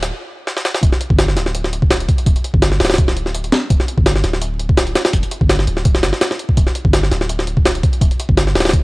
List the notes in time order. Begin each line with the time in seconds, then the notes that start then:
Already playing: D1
0.03 snare, closed hi-hat
0.47 snare
0.57 snare
0.65 snare
0.75 snare
0.83 D1, kick, closed hi-hat
0.92 snare
1.01 closed hi-hat
1.10 G1, kick
1.19 snare, closed hi-hat
1.28 snare
1.36 D1, snare, closed hi-hat
1.46 snare
1.55 closed hi-hat
1.64 snare
1.73 closed hi-hat
1.82 kick
1.90 snare, closed hi-hat
2.00 closed hi-hat
2.09 kick, closed hi-hat
2.18 closed hi-hat
2.26 D1, kick, closed hi-hat
2.36 closed hi-hat
2.44 closed hi-hat
2.54 G1, kick
2.62 snare, closed hi-hat
2.72 snare
2.80 D1, snare, closed hi-hat
2.85 snare, closed hi-hat
2.90 snare, closed hi-hat
2.94 snare, closed hi-hat
2.98 kick, closed hi-hat
3.08 snare
3.17 closed hi-hat
3.26 snare
3.35 closed hi-hat
3.44 closed hi-hat
3.52 snare, closed hi-hat
3.70 D1, kick, closed hi-hat
3.80 snare
3.88 closed hi-hat
3.98 G1, kick
4.06 snare, closed hi-hat
4.16 snare
4.24 D1, snare, closed hi-hat
4.33 snare
4.42 closed hi-hat
4.60 closed hi-hat
4.69 kick
4.77 snare, closed hi-hat
4.87 closed hi-hat
4.95 snare, closed hi-hat
5.05 snare, closed hi-hat
5.13 D1, kick, closed hi-hat
5.23 closed hi-hat
5.31 closed hi-hat
5.41 G1, kick
5.49 snare, closed hi-hat
5.59 snare
5.67 D1, closed hi-hat
5.77 snare
5.85 kick, closed hi-hat
5.95 snare
6.03 G1, snare, closed hi-hat
6.13 snare
6.21 snare, closed hi-hat
6.31 snare
6.39 closed hi-hat
6.49 kick
6.57 D1, kick, closed hi-hat
6.67 snare
6.75 closed hi-hat
6.85 G1, kick
6.93 snare, closed hi-hat
7.03 snare
7.11 D1, snare, closed hi-hat
7.21 snare
7.29 closed hi-hat
7.39 snare
7.47 closed hi-hat
7.57 kick
7.65 snare, closed hi-hat
7.75 closed hi-hat
7.83 kick, closed hi-hat
7.93 closed hi-hat
8.01 D1, kick, closed hi-hat
8.11 closed hi-hat
8.20 closed hi-hat
8.29 G1, kick
8.37 snare, closed hi-hat
8.47 snare
8.55 D1, snare, closed hi-hat
8.60 snare, closed hi-hat
8.65 snare, closed hi-hat
8.69 snare, closed hi-hat
8.73 kick, closed hi-hat